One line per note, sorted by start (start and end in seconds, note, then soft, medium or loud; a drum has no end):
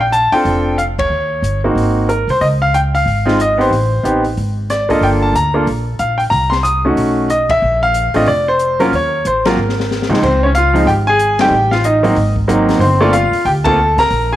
0.00 0.29 A#1 medium
0.00 0.12 G5 medium
0.12 0.33 A5 medium
0.12 closed hi-hat soft
0.32 0.75 C4 medium
0.32 0.76 D4 soft
0.32 0.76 F4 medium
0.32 0.76 A4 medium
0.32 0.75 G5 medium
0.32 muted upright bass stroke soft
0.32 open hi-hat soft
0.45 1.07 F1 medium
0.45 open hi-hat soft
0.78 0.83 F5 medium
0.78 closed hi-hat soft
0.99 1.60 C#5 medium
0.99 kick medium
0.99 ride medium
1.10 1.41 D#2 medium
1.42 1.73 G1 medium
1.42 closed hi-hat soft
1.64 2.06 A#3 soft
1.64 2.07 C4 soft
1.64 2.07 D#4 soft
1.64 2.07 F#4 medium
1.75 2.24 G#1 medium
1.75 open hi-hat soft
2.09 2.27 A#4 medium
2.09 closed hi-hat soft
2.27 2.40 C2 medium
2.27 2.41 C5 medium
2.27 open hi-hat soft
2.41 3.03 C#2 medium
2.41 2.46 D#5 medium
2.41 open hi-hat soft
2.62 2.74 F5 medium
2.74 2.79 G5 medium
2.74 closed hi-hat soft
2.95 3.36 F5 medium
2.95 open hi-hat soft
3.06 3.68 G#1 medium
3.06 open hi-hat soft
3.26 3.37 G#3 medium
3.26 3.37 C4 medium
3.26 3.38 D#4 medium
3.26 3.38 F4 medium
3.26 snare soft
3.40 3.59 D#5 medium
3.40 closed hi-hat soft
3.57 3.69 B3 medium
3.57 3.70 C4 medium
3.57 3.70 D#4 soft
3.57 3.70 G4 medium
3.57 4.21 C5 medium
3.57 open hi-hat soft
3.71 4.01 A1 medium
3.71 open hi-hat soft
4.03 4.34 A1 medium
4.03 4.21 B3 soft
4.03 4.22 C4 soft
4.03 4.22 D#4 soft
4.03 4.22 G4 medium
4.03 closed hi-hat medium
4.25 open hi-hat soft
4.37 4.99 G#1 medium
4.37 open hi-hat soft
4.70 4.90 D5 medium
4.70 snare soft
4.70 closed hi-hat soft
4.89 5.31 A#3 medium
4.89 5.32 D4 medium
4.89 5.32 F4 medium
4.89 5.32 A4 medium
4.89 5.02 D#5 medium
4.89 kick soft
4.89 open hi-hat soft
5.01 5.31 G1 medium
5.01 5.08 G5 medium
5.01 open hi-hat soft
5.22 5.34 A5 medium
5.33 5.64 D2 medium
5.33 5.53 A#5 medium
5.33 closed hi-hat soft
5.54 5.65 A#3 medium
5.54 5.66 D4 soft
5.54 5.66 F4 soft
5.54 5.66 A4 medium
5.67 5.97 A#1 medium
5.67 open hi-hat soft
5.99 6.29 A#1 medium
5.99 6.18 F5 medium
5.99 closed hi-hat soft
6.18 6.23 G5 medium
6.18 open hi-hat soft
6.30 6.93 C2 medium
6.30 6.51 A#5 medium
6.30 open hi-hat soft
6.50 6.64 C6 medium
6.50 snare soft
6.63 6.82 D#6 medium
6.63 closed hi-hat soft
6.85 7.27 A3 medium
6.85 7.27 C#4 soft
6.85 7.27 D#4 soft
6.85 7.28 F#4 medium
6.96 7.58 B1 medium
6.96 open hi-hat soft
7.30 7.48 D#5 medium
7.30 closed hi-hat soft
7.49 7.80 E5 loud
7.49 kick medium
7.49 ride medium
7.62 8.11 A#1 medium
7.83 8.16 F5 medium
7.94 closed hi-hat medium
8.14 8.26 A1 medium
8.14 8.26 A3 medium
8.14 8.26 C4 medium
8.14 8.26 D4 medium
8.14 8.26 F4 medium
8.14 8.27 D#5 medium
8.14 open hi-hat soft
8.26 8.88 F1 medium
8.26 8.46 D5 medium
8.26 open hi-hat soft
8.48 8.81 C5 medium
8.59 closed hi-hat soft
8.79 8.91 F#3 medium
8.79 8.91 A#3 medium
8.79 8.91 C#4 medium
8.79 8.92 F4 medium
8.79 8.85 A#4 medium
8.79 open hi-hat soft
8.92 9.22 D#2 medium
8.92 9.24 C#5 medium
8.92 open hi-hat soft
9.25 9.55 A1 medium
9.25 9.44 C5 medium
9.25 closed hi-hat soft
9.45 9.56 F#3 medium
9.45 9.56 A#3 medium
9.45 9.57 C4 medium
9.45 9.57 F4 medium
9.45 10.06 A#4 medium
9.45 snare medium
9.45 ride medium
9.57 10.05 G#1 medium
9.69 snare soft
9.80 snare medium
9.91 snare medium
10.02 snare medium
10.09 10.21 C#2 medium
10.09 10.21 G#2 medium
10.09 10.21 F3 medium
10.09 10.21 G#3 soft
10.09 10.21 C4 medium
10.09 10.21 D#4 medium
10.14 snare medium
10.23 10.84 C#2 medium
10.23 10.42 C4 medium
10.23 10.43 C5 medium
10.23 kick medium
10.23 crash medium
10.43 10.50 C#4 medium
10.43 10.48 C#5 medium
10.55 10.86 F4 medium
10.55 10.85 F5 medium
10.55 closed hi-hat medium
10.73 10.85 F3 medium
10.73 10.85 G#3 medium
10.73 10.86 C4 medium
10.73 10.86 D#4 medium
10.73 open hi-hat soft
10.86 11.48 G#1 medium
10.86 10.92 G5 medium
10.86 open hi-hat soft
10.90 10.95 G4 medium
11.07 11.38 G#4 medium
11.07 11.37 G#5 loud
11.19 closed hi-hat medium
11.39 11.50 G3 medium
11.39 11.51 A3 soft
11.39 11.51 C4 medium
11.39 11.51 D#4 medium
11.39 11.71 G4 medium
11.39 11.73 G5 loud
11.39 snare medium
11.39 ride medium
11.50 12.12 A1 medium
11.71 11.84 F4 medium
11.71 11.84 F5 medium
11.71 snare soft
11.84 12.03 D#4 medium
11.84 12.33 D#5 medium
11.84 closed hi-hat medium
12.03 12.15 F#3 medium
12.03 12.15 A#3 medium
12.03 12.15 C4 medium
12.03 12.15 D#4 medium
12.03 open hi-hat soft
12.15 12.77 G#1 medium
12.15 open hi-hat soft
12.36 kick medium
12.48 12.80 F#3 medium
12.48 12.81 A#3 medium
12.48 12.81 C4 medium
12.48 12.81 D#4 medium
12.48 closed hi-hat medium
12.69 snare medium
12.69 open hi-hat soft
12.79 13.28 G1 medium
12.79 13.00 C4 medium
12.79 12.99 C5 medium
12.79 open hi-hat soft
13.01 13.12 A3 medium
13.01 13.12 A#3 medium
13.01 13.12 C4 medium
13.01 13.14 D4 medium
13.01 13.13 F4 medium
13.01 13.13 D5 medium
13.13 13.44 F4 medium
13.13 13.43 F5 medium
13.13 closed hi-hat medium
13.32 muted upright bass stroke soft
13.32 open hi-hat soft
13.45 13.94 D2 medium
13.45 13.53 G4 medium
13.45 13.51 G5 medium
13.45 open hi-hat soft
13.64 13.76 A3 medium
13.64 13.77 A#3 medium
13.64 13.77 C4 medium
13.64 13.77 F4 medium
13.64 13.96 A4 medium
13.64 13.98 A5 loud
13.64 kick medium
13.64 ride medium
13.97 14.09 C2 medium
13.97 14.29 A#4 medium
13.97 14.31 A#5 loud
13.97 snare soft
13.97 open hi-hat soft
14.10 14.36 A#1 medium
14.10 open hi-hat soft
14.32 14.36 G#4 medium
14.32 14.36 G#5 medium